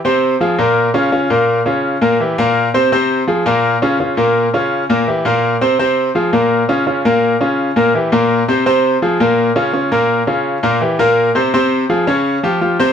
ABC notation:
X:1
M:4/4
L:1/8
Q:1/4=167
K:Fm
V:1 name="Grand piano"
[C,Cc]2 [F,FA] [B,,B,B]2 [D,DF] [D,DF] [B,,B,B]- | [B,,B,B] [D,DF]2 [B,,B,B] [=E,=EG] [B,,B,B]2 [C,Cc] | [C,Cc]2 [F,FA] [B,,B,B]2 [D,DF] [D,DF] [B,,B,B]- | [B,,B,B] [D,DF]2 [B,,B,B] [=E,=EG] [B,,B,B]2 [C,Cc] |
[C,Cc]2 [F,FA] [B,,B,B]2 [D,DF] [D,DF] [B,,B,B]- | [B,,B,B] [D,DF]2 [B,,B,B] [=E,=EG] [B,,B,B]2 [C,Cc] | [C,Cc]2 [F,FA] [B,,B,B]2 [D,DF] [D,DF] [B,,B,B]- | [B,,B,B] [D,DF]2 [B,,B,B] [=E,=EG] [B,,B,B]2 [C,Cc] |
[C,Cc]2 [F,FA] [D,Dd]2 [F,FG] [F,FG] [C,Cc] |]